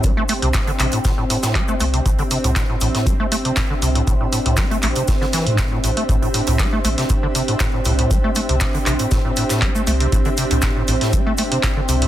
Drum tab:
HH |x-oxxxoxx-oxx-ox|xxoxx-oxx-oxx-ox|x-oxxxoxx-oxx-ox|xxoxx-oxx-oxx-ox|
SH |x-x-x-x-x-xx-xx-|x-x-x-x-x-x-x-x-|x-x-x-x-x-x-x-x-|x-x-x-x-x-x-x-x-|
CP |----x-x-----x---|----x-------x---|----x-x-----x---|----x-------x---|
SD |----o---o--o----|----o--o----o---|----o---ooo-o---|----o--o----o---|
BD |o---o---o---o---|o---o---o---o---|o---o---o---o---|o---o---o---o---|

HH |x-oxxxoxx-oxx-ox|xxoxx-oxx-oxx-ox|
SH |x-x-x-x-x-xx-xx-|x-x-x-x-x-x-x-x-|
CP |----x-x-----x---|----x-------x---|
SD |----o---o--o----|----o--o----o---|
BD |o---o---o---o---|o---o---o---o---|